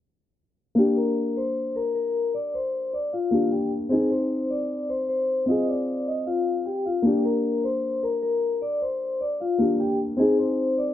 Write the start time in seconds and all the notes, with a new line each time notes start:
0.75 A#3 D4 G4 G5
0.80 G4
0.97 A#4 A#5
1.37 C5 C6
1.76 A#4 A#5
1.95 A#4 A#5
2.34 D5 D6
2.54 C5 C6
2.93 D5 D6
3.13 F4 F5
3.31 A#3 D4 G4
3.52 G4 G5
3.89 C4 D#4 G#4 G#5
3.95 G#4
4.11 C5 C6
4.50 D5 D6
4.89 C5 C6
5.09 C5 C6
5.46 C4 F4 D#5 D#6
5.51 G#4
5.68 D5 D6
6.07 D#5 D#6
6.26 F4 F5
6.66 G4 G5
6.86 F4 F5
7.02 A#3 D4 G4 G5
7.08 G4
7.24 A#4 A#5
7.64 C5 C6
8.03 A#4 A#5
8.22 A#4 A#5
8.62 D5 D6
8.81 C5 C6
9.21 D5 D6
9.40 F4 F5
9.58 A#3 D4 G4
9.79 G4 G5
10.17 C4 D#4 G#4 G#5
10.22 G#4
10.38 C5 C6
10.78 D5 D6